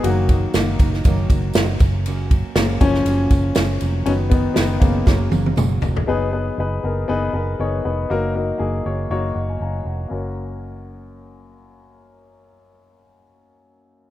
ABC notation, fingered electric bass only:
X:1
M:4/4
L:1/8
Q:"Swing 16ths" 1/4=119
K:F#
V:1 name="Fingered electric bass" clef=bass
F,,,2 F,,, F,,, F,,, F,,, F,,, F,,,- | F,,,2 F,,, F,,, F,,, F,,, F,,, E,,, | F,,,2 F,,, F,,, F,,, F,,, F,,, E,,, | F,,,2 F,,, F,,, F,,, F,,, F,,, E,,, |
F,,,2 F,,, F,,, F,,, F,,, F,,, E,,, | F,,,8- | F,,,8 |]